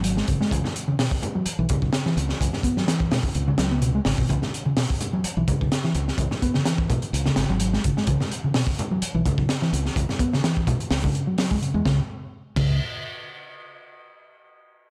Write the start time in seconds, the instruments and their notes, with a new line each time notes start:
Already playing: fingered electric bass G#1, downlifter
0.04 picked electric bass F#3, closed hi-hat
0.17 picked electric bass G#3, snare
0.28 fingered electric bass G#1, picked electric bass C#3, kick, closed hi-hat
0.41 picked electric bass G#3, snare
0.51 fingered electric bass C#2, picked electric bass C#3, kick, closed hi-hat, high conga
0.64 snare, low conga
0.76 closed hi-hat
0.88 picked electric bass C#3, high conga
0.99 picked electric bass B2, snare, open hi-hat
1.11 kick
1.22 closed hi-hat, low conga
1.35 picked electric bass F#3, high conga
1.46 muted fingered electric bass stroke, closed hi-hat
1.59 fingered electric bass B1, picked electric bass E3
1.69 picked electric bass C#3, kick, closed hi-hat, low conga
1.82 fingered electric bass B1, kick
1.93 snare, closed hi-hat
2.06 picked electric bass E3, snare
2.17 fingered electric bass C#2, closed hi-hat
2.29 snare
2.40 fingered electric bass C#2, kick, closed hi-hat, high conga
2.53 snare, low conga
2.63 picked electric bass B3, kick, closed hi-hat
2.77 picked electric bass F#3, snare, high conga
2.88 picked electric bass E3, snare, closed hi-hat
3.00 kick
3.11 picked electric bass B2, snare, open hi-hat, low conga
3.23 kick, high conga
3.35 fingered electric bass C#2, closed hi-hat
3.48 picked electric bass C#3, low conga
3.58 fingered electric bass C#2, picked electric bass F#3, snare, closed hi-hat
3.71 picked electric bass B3
3.82 picked electric bass B2, closed hi-hat
3.95 picked electric bass G#3
4.05 fingered electric bass G#1, picked electric bass C#3, snare, open hi-hat
4.18 fingered electric bass G#1, picked electric bass B2, kick
4.29 fingered electric bass C#2, picked electric bass C#3, kick, closed hi-hat, high conga
4.42 snare, low conga
4.54 closed hi-hat
4.65 picked electric bass C#3, high conga
4.77 picked electric bass B2, snare, open hi-hat
4.90 kick
5.00 closed hi-hat, low conga
5.13 picked electric bass F#3, high conga
5.24 muted fingered electric bass stroke, closed hi-hat
5.37 fingered electric bass B1, picked electric bass E3
5.48 picked electric bass C#3, kick, closed hi-hat, low conga
5.61 fingered electric bass B1, kick
5.72 snare, closed hi-hat
5.84 picked electric bass E3, snare
5.95 fingered electric bass C#2, closed hi-hat
6.08 snare
6.18 fingered electric bass C#2, kick, closed hi-hat, high conga
6.31 snare, low conga
6.42 picked electric bass B3, kick, closed hi-hat
6.54 picked electric bass C#3, snare, high conga
6.65 picked electric bass E3, snare, closed hi-hat
6.78 kick
6.89 picked electric bass B2, kick, closed hi-hat, low conga
7.02 closed hi-hat, high conga
7.13 fingered electric bass C#2, closed hi-hat
7.26 picked electric bass C#3, snare, low conga
7.36 fingered electric bass G#1, snare, closed hi-hat
7.49 fingered electric bass G#1, picked electric bass F#3
7.60 picked electric bass F#3, closed hi-hat
7.73 picked electric bass G#3, snare
7.84 fingered electric bass G#1, picked electric bass C#3, kick, closed hi-hat
7.97 picked electric bass G#3, snare
8.07 fingered electric bass C#2, picked electric bass C#3, kick, closed hi-hat, high conga
8.20 snare, low conga
8.31 closed hi-hat
8.44 picked electric bass C#3, high conga
8.54 picked electric bass B2, snare, open hi-hat
8.67 kick
8.79 closed hi-hat, low conga
8.91 picked electric bass F#3, high conga
9.02 muted fingered electric bass stroke, closed hi-hat
9.14 fingered electric bass B1, picked electric bass E3
9.26 picked electric bass C#3, kick, closed hi-hat, low conga
9.38 fingered electric bass B1, kick
9.49 snare, closed hi-hat
9.62 picked electric bass E3, snare
9.73 fingered electric bass C#2, closed hi-hat
9.86 snare
9.96 fingered electric bass C#2, kick, closed hi-hat, high conga
10.09 snare, low conga
10.19 picked electric bass B3, kick, closed hi-hat
10.33 picked electric bass C#3, snare, high conga
10.44 picked electric bass E3, snare, closed hi-hat
10.57 kick
10.67 picked electric bass B2, kick, closed hi-hat, low conga
10.80 closed hi-hat, high conga
10.91 fingered electric bass C#2, snare, open hi-hat
11.03 picked electric bass C#3, kick, low conga
11.15 closed hi-hat
11.27 picked electric bass F#3
11.38 picked electric bass F#3, snare, open hi-hat
11.51 picked electric bass G#3, kick
11.62 picked electric bass C#3, closed hi-hat
11.74 fingered electric bass E2, picked electric bass G#3
11.85 fingered electric bass C#2, picked electric bass C#3, kick, snare
12.56 fingered electric bass C#2, picked electric bass C#3, kick, crash